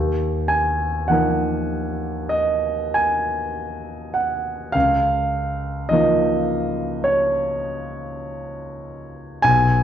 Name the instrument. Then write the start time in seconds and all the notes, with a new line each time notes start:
grand piano
Already playing: D#2
0.48 G#5
1.08 F3 A#3 D#4 A#4 F#5
2.29 D#5
2.94 G#5
4.14 F#5
4.72 C#2 F5
5.89 F3 A#3 F4 D#5
5.93 D#4
7.04 C#5
9.42 B1 G#5